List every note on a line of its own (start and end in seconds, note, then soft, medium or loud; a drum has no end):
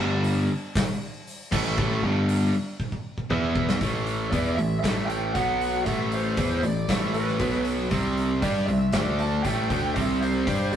0.00 0.47 G1 loud
0.00 0.49 G2 medium
0.00 0.49 D3 medium
0.00 0.49 G3 loud
0.24 open hi-hat medium
0.75 kick loud
0.75 snare loud
0.75 open hi-hat medium
1.27 open hi-hat medium
1.51 1.76 A1 loud
1.51 1.76 A2 medium
1.51 1.77 E3 loud
1.51 1.77 A3 medium
1.51 kick loud
1.51 crash loud
1.77 2.01 A1 loud
1.77 2.02 A2 loud
1.77 2.03 E3 loud
1.77 2.03 A3 loud
1.77 kick loud
2.03 2.50 G1 loud
2.03 2.53 G2 medium
2.03 2.53 D3 loud
2.03 2.54 G3 loud
2.29 open hi-hat medium
2.80 kick medium
2.92 kick medium
3.18 kick medium
3.30 3.78 E2 medium
3.30 3.80 E3 medium
3.30 3.81 B3 medium
3.30 3.81 E4 loud
3.30 kick medium
3.56 kick medium
3.69 snare medium
3.81 4.29 A1 medium
3.81 4.32 A2 medium
3.81 4.31 E3 loud
3.81 4.32 A3 loud
3.81 kick loud
3.81 open hi-hat medium
4.07 open hi-hat soft
4.30 4.56 E2 medium
4.30 4.57 E3 medium
4.30 4.58 B3 medium
4.30 4.58 E4 medium
4.30 4.58 D5 medium
4.30 kick loud
4.30 open hi-hat medium
4.55 4.82 A1 medium
4.55 4.79 A2 medium
4.55 4.79 E3 medium
4.55 4.78 E5 loud
4.55 open hi-hat soft
4.80 5.34 A2 medium
4.80 5.06 E5 medium
4.84 5.32 A1 medium
4.84 5.34 E3 medium
4.84 5.35 A3 medium
4.84 kick loud
4.84 snare loud
4.84 open hi-hat medium
5.06 5.34 G5 loud
5.06 open hi-hat medium
5.34 5.83 B1 medium
5.34 5.85 B2 medium
5.34 5.86 F#3 medium
5.34 5.86 B3 medium
5.34 5.84 F#5 loud
5.34 kick medium
5.34 open hi-hat medium
5.61 open hi-hat medium
5.85 6.34 A1 medium
5.85 6.37 A2 medium
5.85 6.36 E3 medium
5.85 6.37 A3 loud
5.85 6.12 E5 medium
5.85 kick medium
5.85 open hi-hat medium
6.12 6.64 C5 medium
6.12 open hi-hat medium
6.37 6.62 E2 medium
6.37 6.62 E3 medium
6.37 6.63 B3 medium
6.37 6.63 E4 loud
6.37 kick loud
6.37 open hi-hat medium
6.63 6.87 A1 medium
6.63 6.84 A2 medium
6.63 6.84 E3 medium
6.63 6.88 D5 medium
6.63 open hi-hat medium
6.88 7.37 A1 medium
6.88 7.38 A2 medium
6.88 7.39 E3 loud
6.88 7.40 A3 medium
6.88 7.14 E5 medium
6.88 kick loud
6.88 snare loud
6.88 open hi-hat medium
7.14 7.62 B4 medium
7.14 open hi-hat medium
7.28 snare soft
7.39 7.88 B1 medium
7.39 7.90 B2 medium
7.39 7.90 F#3 medium
7.39 7.91 B3 loud
7.39 kick loud
7.39 open hi-hat medium
7.65 open hi-hat medium
7.90 8.39 C2 medium
7.90 8.41 C3 medium
7.90 8.41 G3 loud
7.90 8.42 C4 loud
7.90 kick loud
7.90 open hi-hat medium
8.18 open hi-hat soft
8.42 8.66 G2 medium
8.42 8.67 G3 medium
8.42 8.67 D4 medium
8.42 8.68 G4 medium
8.42 8.66 D5 medium
8.42 kick loud
8.42 open hi-hat medium
8.66 8.92 C2 medium
8.66 8.88 C3 medium
8.66 8.89 G3 medium
8.66 8.93 E5 medium
8.66 open hi-hat soft
8.92 9.41 D2 medium
8.92 9.44 D3 medium
8.92 9.44 A3 medium
8.92 9.45 D4 loud
8.92 9.20 E5 medium
8.92 kick loud
8.92 snare loud
8.92 open hi-hat medium
9.19 9.43 A5 medium
9.19 open hi-hat soft
9.43 9.69 A1 medium
9.43 9.69 A2 medium
9.43 9.70 E3 medium
9.43 9.69 A3 medium
9.43 9.97 G5 loud
9.43 kick loud
9.43 open hi-hat medium
9.70 9.94 D2 medium
9.70 9.95 D3 medium
9.70 9.95 A3 medium
9.70 9.95 D4 loud
9.70 kick loud
9.70 open hi-hat medium
9.94 10.43 C2 medium
9.94 10.46 C3 loud
9.94 10.45 G3 medium
9.94 10.46 C4 loud
9.94 10.21 E5 medium
9.94 kick loud
9.94 open hi-hat medium
10.21 10.74 C5 medium
10.21 open hi-hat medium
10.46 10.71 G2 medium
10.46 10.71 G3 medium
10.46 10.71 D4 medium
10.46 10.72 G4 medium
10.46 kick loud
10.46 open hi-hat medium
10.71 10.76 C2 medium
10.71 10.76 C3 medium
10.71 10.76 G3 medium
10.71 10.76 D5 medium
10.71 open hi-hat medium